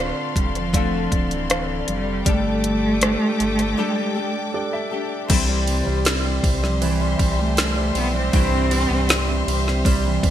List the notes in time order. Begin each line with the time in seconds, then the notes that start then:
Already playing: D1 D3 A3 C4 F4 A4 D5 F5 C6
0.00 D4 F4
0.36 E1 G3, kick, closed hi-hat
0.55 F3, cross-stick, closed hi-hat
0.73 D3 A3 C4 D4 F4, kick, closed hi-hat
0.77 A4
1.12 D1, kick, closed hi-hat
1.31 E3, closed hi-hat
1.49 C4 D4 F5, cross-stick, closed hi-hat
1.88 F1 G3, closed hi-hat
2.25 G1 G3 A3 D4 G4 A4 G5 D6, kick, closed hi-hat
2.29 A4
2.64 closed hi-hat
3.01 D4 G4 A4, cross-stick, closed hi-hat
3.40 G1, closed hi-hat
3.59 cross-stick, closed hi-hat
3.77 G3 D4 G4 A4
4.15 D4 G4 A4
4.54 D4 G4 A4 D5
4.73 E5
4.91 D4 G4 A4
5.28 C2 C3 E3 G3 C4 E4 G4 C5 E5 C6, kick, crash, ride
5.33 C5
5.48 G3
5.67 C3, ride
5.86 C2 G3
6.05 C3, snare, ride
6.24 G3
6.44 C2 C3 G3, kick, ride
6.62 F3 G3, snare
6.81 E3 G3 C4 E4 C5, ride
7.01 G3
7.19 C2, kick, ride
7.39 G3 A3
7.57 snare, ride
7.77 G3
7.95 B1 G3 B3 C4 E4 C5, ride
8.14 G3 C4
8.32 C2 G2 C3 E3 G3 C4 E4, kick, ride
8.36 C5
8.52 C3
8.71 G3, ride
8.90 C2 C3
9.09 G3, snare, ride
9.29 C3
9.47 C2 G3, ride
9.67 C4, snare
9.85 G3 C4 E4 C5, kick, ride
10.05 E3
10.23 C2 G3, kick, ride